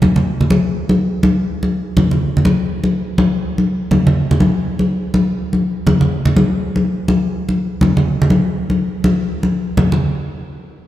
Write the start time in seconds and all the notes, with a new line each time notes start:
0.02 high conga, low conga
0.16 low conga
0.41 low conga
0.50 high conga
0.89 high conga
1.23 high conga
1.63 high conga
1.97 high conga, low conga
2.11 low conga
2.37 low conga
2.45 high conga
2.84 high conga
3.18 high conga
3.58 high conga
3.91 high conga, low conga
4.07 low conga
4.31 low conga
4.40 high conga
4.79 high conga
5.14 high conga
5.53 high conga
5.87 high conga, low conga
6.01 low conga
6.25 low conga
6.37 high conga
6.76 high conga
7.08 high conga
7.49 high conga
7.81 high conga, low conga
7.97 low conga
8.22 low conga
8.30 high conga
8.70 high conga
9.04 high conga
9.43 high conga
9.77 high conga, low conga
9.92 low conga